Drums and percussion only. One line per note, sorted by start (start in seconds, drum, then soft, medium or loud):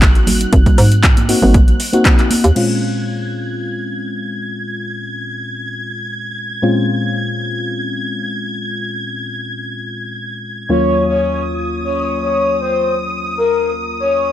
0.02 kick loud
0.02 clap loud
0.02 closed hi-hat medium
0.15 closed hi-hat soft
0.27 open hi-hat loud
0.27 high conga medium
0.27 low conga medium
0.41 closed hi-hat medium
0.53 kick loud
0.53 closed hi-hat medium
0.66 kick medium
0.66 closed hi-hat soft
0.66 high conga medium
0.66 low conga medium
0.78 open hi-hat loud
0.92 closed hi-hat soft
1.03 kick loud
1.03 clap loud
1.03 closed hi-hat medium
1.17 closed hi-hat medium
1.17 high conga medium
1.29 open hi-hat loud
1.42 low conga medium
1.54 kick loud
1.54 closed hi-hat medium
1.54 high conga medium
1.68 closed hi-hat soft
1.80 open hi-hat loud
1.93 closed hi-hat soft
1.93 high conga medium
2.05 kick loud
2.05 clap loud
2.05 closed hi-hat medium
2.19 clap soft
2.19 closed hi-hat soft
2.31 open hi-hat loud
2.31 high conga medium
2.44 closed hi-hat medium
2.56 crash medium